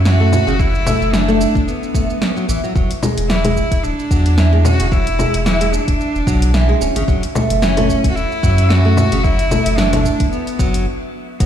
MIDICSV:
0, 0, Header, 1, 5, 480
1, 0, Start_track
1, 0, Key_signature, 3, "minor"
1, 0, Tempo, 540541
1, 527, Time_signature, 4, 2, 24, 8
1, 10175, End_track
2, 0, Start_track
2, 0, Title_t, "Cello"
2, 0, Program_c, 0, 42
2, 52, Note_on_c, 0, 66, 98
2, 532, Note_on_c, 0, 64, 108
2, 546, Note_off_c, 0, 66, 0
2, 1010, Note_on_c, 0, 62, 93
2, 1024, Note_off_c, 0, 64, 0
2, 1490, Note_on_c, 0, 59, 78
2, 1503, Note_off_c, 0, 62, 0
2, 2209, Note_off_c, 0, 59, 0
2, 2926, Note_on_c, 0, 64, 88
2, 3410, Note_on_c, 0, 62, 93
2, 3424, Note_off_c, 0, 64, 0
2, 4132, Note_on_c, 0, 66, 102
2, 4146, Note_off_c, 0, 62, 0
2, 4308, Note_off_c, 0, 66, 0
2, 4308, Note_on_c, 0, 66, 74
2, 4371, Note_on_c, 0, 64, 100
2, 4385, Note_off_c, 0, 66, 0
2, 4847, Note_off_c, 0, 64, 0
2, 4853, Note_on_c, 0, 64, 91
2, 5091, Note_on_c, 0, 62, 92
2, 5105, Note_off_c, 0, 64, 0
2, 6049, Note_off_c, 0, 62, 0
2, 6764, Note_on_c, 0, 61, 94
2, 7160, Note_off_c, 0, 61, 0
2, 7190, Note_on_c, 0, 66, 77
2, 7243, Note_on_c, 0, 64, 107
2, 7257, Note_off_c, 0, 66, 0
2, 7723, Note_on_c, 0, 66, 103
2, 7736, Note_off_c, 0, 64, 0
2, 8203, Note_on_c, 0, 64, 111
2, 8216, Note_off_c, 0, 66, 0
2, 8679, Note_on_c, 0, 62, 97
2, 8693, Note_off_c, 0, 64, 0
2, 9154, Note_off_c, 0, 62, 0
2, 9160, Note_on_c, 0, 59, 82
2, 9609, Note_off_c, 0, 59, 0
2, 10127, Note_on_c, 0, 59, 95
2, 10175, Note_off_c, 0, 59, 0
2, 10175, End_track
3, 0, Start_track
3, 0, Title_t, "Nylon-string guitar"
3, 0, Program_c, 1, 24
3, 47, Note_on_c, 1, 52, 92
3, 173, Note_off_c, 1, 52, 0
3, 179, Note_on_c, 1, 57, 99
3, 281, Note_off_c, 1, 57, 0
3, 287, Note_on_c, 1, 61, 72
3, 406, Note_off_c, 1, 61, 0
3, 418, Note_on_c, 1, 49, 95
3, 480, Note_off_c, 1, 49, 0
3, 525, Note_on_c, 1, 54, 71
3, 652, Note_off_c, 1, 54, 0
3, 766, Note_on_c, 1, 57, 72
3, 996, Note_off_c, 1, 57, 0
3, 1007, Note_on_c, 1, 52, 85
3, 1133, Note_off_c, 1, 52, 0
3, 1140, Note_on_c, 1, 57, 100
3, 1242, Note_off_c, 1, 57, 0
3, 1727, Note_on_c, 1, 57, 71
3, 1803, Note_off_c, 1, 57, 0
3, 1967, Note_on_c, 1, 61, 75
3, 2043, Note_off_c, 1, 61, 0
3, 2100, Note_on_c, 1, 54, 72
3, 2202, Note_off_c, 1, 54, 0
3, 2208, Note_on_c, 1, 52, 70
3, 2327, Note_off_c, 1, 52, 0
3, 2341, Note_on_c, 1, 54, 68
3, 2437, Note_off_c, 1, 54, 0
3, 2448, Note_on_c, 1, 54, 69
3, 2573, Note_off_c, 1, 54, 0
3, 2688, Note_on_c, 1, 56, 73
3, 2917, Note_off_c, 1, 56, 0
3, 2928, Note_on_c, 1, 52, 89
3, 3053, Note_off_c, 1, 52, 0
3, 3060, Note_on_c, 1, 56, 99
3, 3162, Note_off_c, 1, 56, 0
3, 3647, Note_on_c, 1, 54, 94
3, 3876, Note_off_c, 1, 54, 0
3, 3888, Note_on_c, 1, 52, 91
3, 4013, Note_off_c, 1, 52, 0
3, 4020, Note_on_c, 1, 56, 92
3, 4122, Note_off_c, 1, 56, 0
3, 4125, Note_on_c, 1, 61, 75
3, 4245, Note_off_c, 1, 61, 0
3, 4258, Note_on_c, 1, 49, 95
3, 4320, Note_off_c, 1, 49, 0
3, 4365, Note_on_c, 1, 54, 72
3, 4492, Note_off_c, 1, 54, 0
3, 4604, Note_on_c, 1, 56, 70
3, 4835, Note_off_c, 1, 56, 0
3, 4846, Note_on_c, 1, 52, 91
3, 4972, Note_off_c, 1, 52, 0
3, 4978, Note_on_c, 1, 56, 96
3, 5081, Note_off_c, 1, 56, 0
3, 5567, Note_on_c, 1, 54, 96
3, 5796, Note_off_c, 1, 54, 0
3, 5807, Note_on_c, 1, 52, 93
3, 5933, Note_off_c, 1, 52, 0
3, 5940, Note_on_c, 1, 56, 96
3, 6042, Note_off_c, 1, 56, 0
3, 6046, Note_on_c, 1, 61, 73
3, 6166, Note_off_c, 1, 61, 0
3, 6179, Note_on_c, 1, 49, 89
3, 6241, Note_off_c, 1, 49, 0
3, 6284, Note_on_c, 1, 54, 72
3, 6412, Note_off_c, 1, 54, 0
3, 6527, Note_on_c, 1, 57, 75
3, 6756, Note_off_c, 1, 57, 0
3, 6767, Note_on_c, 1, 52, 95
3, 6893, Note_off_c, 1, 52, 0
3, 6900, Note_on_c, 1, 57, 102
3, 7002, Note_off_c, 1, 57, 0
3, 7486, Note_on_c, 1, 54, 99
3, 7716, Note_off_c, 1, 54, 0
3, 7727, Note_on_c, 1, 52, 90
3, 7853, Note_off_c, 1, 52, 0
3, 7858, Note_on_c, 1, 57, 92
3, 7961, Note_off_c, 1, 57, 0
3, 7967, Note_on_c, 1, 61, 77
3, 8086, Note_off_c, 1, 61, 0
3, 8100, Note_on_c, 1, 49, 92
3, 8161, Note_off_c, 1, 49, 0
3, 8207, Note_on_c, 1, 54, 71
3, 8333, Note_off_c, 1, 54, 0
3, 8447, Note_on_c, 1, 57, 74
3, 8676, Note_off_c, 1, 57, 0
3, 8689, Note_on_c, 1, 52, 97
3, 8814, Note_off_c, 1, 52, 0
3, 8820, Note_on_c, 1, 57, 108
3, 8922, Note_off_c, 1, 57, 0
3, 9407, Note_on_c, 1, 54, 102
3, 9636, Note_off_c, 1, 54, 0
3, 10123, Note_on_c, 1, 54, 70
3, 10175, Note_off_c, 1, 54, 0
3, 10175, End_track
4, 0, Start_track
4, 0, Title_t, "Sub bass"
4, 0, Program_c, 2, 38
4, 0, Note_on_c, 2, 42, 86
4, 338, Note_off_c, 2, 42, 0
4, 419, Note_on_c, 2, 30, 100
4, 818, Note_off_c, 2, 30, 0
4, 899, Note_on_c, 2, 30, 97
4, 1298, Note_off_c, 2, 30, 0
4, 1378, Note_on_c, 2, 30, 75
4, 1445, Note_off_c, 2, 30, 0
4, 2207, Note_on_c, 2, 33, 77
4, 2289, Note_off_c, 2, 33, 0
4, 2447, Note_on_c, 2, 28, 102
4, 2528, Note_off_c, 2, 28, 0
4, 2820, Note_on_c, 2, 28, 100
4, 3218, Note_off_c, 2, 28, 0
4, 3299, Note_on_c, 2, 28, 75
4, 3365, Note_off_c, 2, 28, 0
4, 3409, Note_on_c, 2, 26, 103
4, 3489, Note_off_c, 2, 26, 0
4, 3648, Note_on_c, 2, 40, 87
4, 4178, Note_off_c, 2, 40, 0
4, 4259, Note_on_c, 2, 28, 96
4, 4658, Note_off_c, 2, 28, 0
4, 4741, Note_on_c, 2, 28, 99
4, 5139, Note_off_c, 2, 28, 0
4, 5220, Note_on_c, 2, 28, 79
4, 5286, Note_off_c, 2, 28, 0
4, 5460, Note_on_c, 2, 28, 105
4, 5526, Note_off_c, 2, 28, 0
4, 5567, Note_on_c, 2, 35, 103
4, 5981, Note_off_c, 2, 35, 0
4, 6047, Note_on_c, 2, 26, 100
4, 6129, Note_off_c, 2, 26, 0
4, 6180, Note_on_c, 2, 32, 90
4, 6246, Note_off_c, 2, 32, 0
4, 6288, Note_on_c, 2, 30, 105
4, 6369, Note_off_c, 2, 30, 0
4, 6661, Note_on_c, 2, 30, 98
4, 7058, Note_off_c, 2, 30, 0
4, 7141, Note_on_c, 2, 30, 76
4, 7206, Note_off_c, 2, 30, 0
4, 7247, Note_on_c, 2, 28, 100
4, 7328, Note_off_c, 2, 28, 0
4, 7488, Note_on_c, 2, 42, 89
4, 8018, Note_off_c, 2, 42, 0
4, 8099, Note_on_c, 2, 30, 97
4, 8498, Note_off_c, 2, 30, 0
4, 8578, Note_on_c, 2, 30, 105
4, 8977, Note_off_c, 2, 30, 0
4, 9060, Note_on_c, 2, 30, 78
4, 9126, Note_off_c, 2, 30, 0
4, 9407, Note_on_c, 2, 30, 81
4, 9647, Note_off_c, 2, 30, 0
4, 10125, Note_on_c, 2, 28, 108
4, 10175, Note_off_c, 2, 28, 0
4, 10175, End_track
5, 0, Start_track
5, 0, Title_t, "Drums"
5, 48, Note_on_c, 9, 38, 94
5, 52, Note_on_c, 9, 82, 44
5, 137, Note_off_c, 9, 38, 0
5, 141, Note_off_c, 9, 82, 0
5, 288, Note_on_c, 9, 64, 74
5, 292, Note_on_c, 9, 82, 73
5, 377, Note_off_c, 9, 64, 0
5, 381, Note_off_c, 9, 82, 0
5, 425, Note_on_c, 9, 82, 34
5, 514, Note_off_c, 9, 82, 0
5, 527, Note_on_c, 9, 36, 119
5, 531, Note_on_c, 9, 82, 40
5, 616, Note_off_c, 9, 36, 0
5, 620, Note_off_c, 9, 82, 0
5, 665, Note_on_c, 9, 82, 33
5, 754, Note_off_c, 9, 82, 0
5, 767, Note_on_c, 9, 64, 77
5, 771, Note_on_c, 9, 82, 83
5, 856, Note_off_c, 9, 64, 0
5, 860, Note_off_c, 9, 82, 0
5, 904, Note_on_c, 9, 82, 33
5, 993, Note_off_c, 9, 82, 0
5, 1008, Note_on_c, 9, 38, 94
5, 1012, Note_on_c, 9, 82, 45
5, 1097, Note_off_c, 9, 38, 0
5, 1100, Note_off_c, 9, 82, 0
5, 1145, Note_on_c, 9, 82, 34
5, 1234, Note_off_c, 9, 82, 0
5, 1251, Note_on_c, 9, 82, 70
5, 1340, Note_off_c, 9, 82, 0
5, 1379, Note_on_c, 9, 36, 105
5, 1385, Note_on_c, 9, 82, 32
5, 1468, Note_off_c, 9, 36, 0
5, 1474, Note_off_c, 9, 82, 0
5, 1493, Note_on_c, 9, 82, 41
5, 1582, Note_off_c, 9, 82, 0
5, 1625, Note_on_c, 9, 82, 32
5, 1714, Note_off_c, 9, 82, 0
5, 1727, Note_on_c, 9, 36, 96
5, 1732, Note_on_c, 9, 82, 83
5, 1815, Note_off_c, 9, 36, 0
5, 1821, Note_off_c, 9, 82, 0
5, 1864, Note_on_c, 9, 82, 32
5, 1953, Note_off_c, 9, 82, 0
5, 1968, Note_on_c, 9, 38, 91
5, 1972, Note_on_c, 9, 82, 42
5, 2057, Note_off_c, 9, 38, 0
5, 2061, Note_off_c, 9, 82, 0
5, 2104, Note_on_c, 9, 82, 31
5, 2193, Note_off_c, 9, 82, 0
5, 2213, Note_on_c, 9, 82, 77
5, 2302, Note_off_c, 9, 82, 0
5, 2345, Note_on_c, 9, 82, 35
5, 2434, Note_off_c, 9, 82, 0
5, 2447, Note_on_c, 9, 36, 112
5, 2452, Note_on_c, 9, 82, 41
5, 2535, Note_off_c, 9, 36, 0
5, 2541, Note_off_c, 9, 82, 0
5, 2581, Note_on_c, 9, 42, 42
5, 2585, Note_on_c, 9, 82, 31
5, 2670, Note_off_c, 9, 42, 0
5, 2674, Note_off_c, 9, 82, 0
5, 2687, Note_on_c, 9, 64, 79
5, 2691, Note_on_c, 9, 82, 72
5, 2776, Note_off_c, 9, 64, 0
5, 2780, Note_off_c, 9, 82, 0
5, 2820, Note_on_c, 9, 42, 53
5, 2824, Note_on_c, 9, 82, 33
5, 2909, Note_off_c, 9, 42, 0
5, 2913, Note_off_c, 9, 82, 0
5, 2928, Note_on_c, 9, 38, 90
5, 2932, Note_on_c, 9, 82, 42
5, 3017, Note_off_c, 9, 38, 0
5, 3021, Note_off_c, 9, 82, 0
5, 3060, Note_on_c, 9, 42, 45
5, 3060, Note_on_c, 9, 64, 63
5, 3064, Note_on_c, 9, 82, 32
5, 3148, Note_off_c, 9, 42, 0
5, 3148, Note_off_c, 9, 64, 0
5, 3152, Note_off_c, 9, 82, 0
5, 3166, Note_on_c, 9, 36, 57
5, 3171, Note_on_c, 9, 82, 74
5, 3255, Note_off_c, 9, 36, 0
5, 3260, Note_off_c, 9, 82, 0
5, 3299, Note_on_c, 9, 36, 98
5, 3300, Note_on_c, 9, 42, 49
5, 3304, Note_on_c, 9, 82, 33
5, 3388, Note_off_c, 9, 36, 0
5, 3389, Note_off_c, 9, 42, 0
5, 3393, Note_off_c, 9, 82, 0
5, 3412, Note_on_c, 9, 82, 44
5, 3501, Note_off_c, 9, 82, 0
5, 3546, Note_on_c, 9, 82, 30
5, 3634, Note_off_c, 9, 82, 0
5, 3647, Note_on_c, 9, 36, 93
5, 3652, Note_on_c, 9, 82, 76
5, 3736, Note_off_c, 9, 36, 0
5, 3741, Note_off_c, 9, 82, 0
5, 3781, Note_on_c, 9, 42, 47
5, 3785, Note_on_c, 9, 82, 31
5, 3870, Note_off_c, 9, 42, 0
5, 3874, Note_off_c, 9, 82, 0
5, 3887, Note_on_c, 9, 38, 89
5, 3891, Note_on_c, 9, 82, 40
5, 3975, Note_off_c, 9, 38, 0
5, 3979, Note_off_c, 9, 82, 0
5, 4127, Note_on_c, 9, 64, 74
5, 4131, Note_on_c, 9, 82, 75
5, 4216, Note_off_c, 9, 64, 0
5, 4220, Note_off_c, 9, 82, 0
5, 4261, Note_on_c, 9, 42, 55
5, 4265, Note_on_c, 9, 82, 31
5, 4349, Note_off_c, 9, 42, 0
5, 4353, Note_off_c, 9, 82, 0
5, 4368, Note_on_c, 9, 36, 117
5, 4372, Note_on_c, 9, 82, 39
5, 4456, Note_off_c, 9, 36, 0
5, 4461, Note_off_c, 9, 82, 0
5, 4502, Note_on_c, 9, 42, 46
5, 4506, Note_on_c, 9, 82, 30
5, 4591, Note_off_c, 9, 42, 0
5, 4595, Note_off_c, 9, 82, 0
5, 4610, Note_on_c, 9, 64, 86
5, 4614, Note_on_c, 9, 82, 75
5, 4699, Note_off_c, 9, 64, 0
5, 4703, Note_off_c, 9, 82, 0
5, 4743, Note_on_c, 9, 42, 55
5, 4747, Note_on_c, 9, 82, 31
5, 4832, Note_off_c, 9, 42, 0
5, 4836, Note_off_c, 9, 82, 0
5, 4849, Note_on_c, 9, 38, 93
5, 4853, Note_on_c, 9, 82, 43
5, 4938, Note_off_c, 9, 38, 0
5, 4942, Note_off_c, 9, 82, 0
5, 4983, Note_on_c, 9, 42, 46
5, 4987, Note_on_c, 9, 82, 31
5, 5072, Note_off_c, 9, 42, 0
5, 5076, Note_off_c, 9, 82, 0
5, 5094, Note_on_c, 9, 82, 72
5, 5183, Note_off_c, 9, 82, 0
5, 5220, Note_on_c, 9, 36, 92
5, 5222, Note_on_c, 9, 42, 49
5, 5226, Note_on_c, 9, 82, 28
5, 5309, Note_off_c, 9, 36, 0
5, 5311, Note_off_c, 9, 42, 0
5, 5315, Note_off_c, 9, 82, 0
5, 5334, Note_on_c, 9, 82, 41
5, 5423, Note_off_c, 9, 82, 0
5, 5467, Note_on_c, 9, 82, 30
5, 5556, Note_off_c, 9, 82, 0
5, 5568, Note_on_c, 9, 36, 96
5, 5575, Note_on_c, 9, 82, 80
5, 5656, Note_off_c, 9, 36, 0
5, 5664, Note_off_c, 9, 82, 0
5, 5703, Note_on_c, 9, 42, 53
5, 5707, Note_on_c, 9, 82, 29
5, 5792, Note_off_c, 9, 42, 0
5, 5796, Note_off_c, 9, 82, 0
5, 5808, Note_on_c, 9, 38, 89
5, 5812, Note_on_c, 9, 82, 40
5, 5897, Note_off_c, 9, 38, 0
5, 5901, Note_off_c, 9, 82, 0
5, 6052, Note_on_c, 9, 82, 75
5, 6141, Note_off_c, 9, 82, 0
5, 6181, Note_on_c, 9, 42, 51
5, 6185, Note_on_c, 9, 82, 32
5, 6270, Note_off_c, 9, 42, 0
5, 6274, Note_off_c, 9, 82, 0
5, 6288, Note_on_c, 9, 36, 115
5, 6293, Note_on_c, 9, 82, 42
5, 6376, Note_off_c, 9, 36, 0
5, 6382, Note_off_c, 9, 82, 0
5, 6421, Note_on_c, 9, 42, 42
5, 6425, Note_on_c, 9, 82, 29
5, 6510, Note_off_c, 9, 42, 0
5, 6514, Note_off_c, 9, 82, 0
5, 6530, Note_on_c, 9, 64, 81
5, 6534, Note_on_c, 9, 82, 76
5, 6619, Note_off_c, 9, 64, 0
5, 6623, Note_off_c, 9, 82, 0
5, 6663, Note_on_c, 9, 42, 54
5, 6667, Note_on_c, 9, 82, 33
5, 6752, Note_off_c, 9, 42, 0
5, 6756, Note_off_c, 9, 82, 0
5, 6770, Note_on_c, 9, 38, 96
5, 6774, Note_on_c, 9, 82, 43
5, 6859, Note_off_c, 9, 38, 0
5, 6863, Note_off_c, 9, 82, 0
5, 6902, Note_on_c, 9, 42, 45
5, 6902, Note_on_c, 9, 64, 65
5, 6906, Note_on_c, 9, 82, 30
5, 6991, Note_off_c, 9, 42, 0
5, 6991, Note_off_c, 9, 64, 0
5, 6995, Note_off_c, 9, 82, 0
5, 7007, Note_on_c, 9, 36, 57
5, 7014, Note_on_c, 9, 82, 66
5, 7096, Note_off_c, 9, 36, 0
5, 7103, Note_off_c, 9, 82, 0
5, 7140, Note_on_c, 9, 36, 102
5, 7143, Note_on_c, 9, 42, 51
5, 7147, Note_on_c, 9, 82, 29
5, 7229, Note_off_c, 9, 36, 0
5, 7232, Note_off_c, 9, 42, 0
5, 7236, Note_off_c, 9, 82, 0
5, 7254, Note_on_c, 9, 82, 40
5, 7343, Note_off_c, 9, 82, 0
5, 7386, Note_on_c, 9, 82, 29
5, 7475, Note_off_c, 9, 82, 0
5, 7488, Note_on_c, 9, 36, 91
5, 7493, Note_on_c, 9, 82, 75
5, 7577, Note_off_c, 9, 36, 0
5, 7582, Note_off_c, 9, 82, 0
5, 7621, Note_on_c, 9, 42, 50
5, 7625, Note_on_c, 9, 82, 31
5, 7710, Note_off_c, 9, 42, 0
5, 7714, Note_off_c, 9, 82, 0
5, 7729, Note_on_c, 9, 38, 94
5, 7733, Note_on_c, 9, 82, 41
5, 7818, Note_off_c, 9, 38, 0
5, 7822, Note_off_c, 9, 82, 0
5, 7967, Note_on_c, 9, 64, 80
5, 7971, Note_on_c, 9, 82, 75
5, 8056, Note_off_c, 9, 64, 0
5, 8060, Note_off_c, 9, 82, 0
5, 8099, Note_on_c, 9, 42, 54
5, 8103, Note_on_c, 9, 82, 32
5, 8188, Note_off_c, 9, 42, 0
5, 8192, Note_off_c, 9, 82, 0
5, 8207, Note_on_c, 9, 36, 122
5, 8210, Note_on_c, 9, 82, 41
5, 8296, Note_off_c, 9, 36, 0
5, 8298, Note_off_c, 9, 82, 0
5, 8339, Note_on_c, 9, 42, 47
5, 8343, Note_on_c, 9, 82, 30
5, 8428, Note_off_c, 9, 42, 0
5, 8432, Note_off_c, 9, 82, 0
5, 8445, Note_on_c, 9, 64, 80
5, 8449, Note_on_c, 9, 82, 77
5, 8534, Note_off_c, 9, 64, 0
5, 8538, Note_off_c, 9, 82, 0
5, 8578, Note_on_c, 9, 42, 56
5, 8582, Note_on_c, 9, 82, 33
5, 8667, Note_off_c, 9, 42, 0
5, 8671, Note_off_c, 9, 82, 0
5, 8685, Note_on_c, 9, 38, 100
5, 8689, Note_on_c, 9, 82, 42
5, 8774, Note_off_c, 9, 38, 0
5, 8778, Note_off_c, 9, 82, 0
5, 8818, Note_on_c, 9, 42, 47
5, 8818, Note_on_c, 9, 64, 65
5, 8822, Note_on_c, 9, 82, 30
5, 8907, Note_off_c, 9, 42, 0
5, 8907, Note_off_c, 9, 64, 0
5, 8911, Note_off_c, 9, 82, 0
5, 8926, Note_on_c, 9, 36, 56
5, 8929, Note_on_c, 9, 82, 72
5, 9015, Note_off_c, 9, 36, 0
5, 9018, Note_off_c, 9, 82, 0
5, 9058, Note_on_c, 9, 42, 54
5, 9059, Note_on_c, 9, 36, 99
5, 9062, Note_on_c, 9, 82, 31
5, 9147, Note_off_c, 9, 42, 0
5, 9148, Note_off_c, 9, 36, 0
5, 9151, Note_off_c, 9, 82, 0
5, 9169, Note_on_c, 9, 82, 41
5, 9258, Note_off_c, 9, 82, 0
5, 9299, Note_on_c, 9, 42, 30
5, 9303, Note_on_c, 9, 82, 29
5, 9388, Note_off_c, 9, 42, 0
5, 9392, Note_off_c, 9, 82, 0
5, 9406, Note_on_c, 9, 36, 97
5, 9410, Note_on_c, 9, 82, 77
5, 9495, Note_off_c, 9, 36, 0
5, 9499, Note_off_c, 9, 82, 0
5, 9539, Note_on_c, 9, 42, 55
5, 9543, Note_on_c, 9, 82, 29
5, 9628, Note_off_c, 9, 42, 0
5, 9632, Note_off_c, 9, 82, 0
5, 10126, Note_on_c, 9, 36, 121
5, 10126, Note_on_c, 9, 42, 55
5, 10130, Note_on_c, 9, 82, 44
5, 10175, Note_off_c, 9, 36, 0
5, 10175, Note_off_c, 9, 42, 0
5, 10175, Note_off_c, 9, 82, 0
5, 10175, End_track
0, 0, End_of_file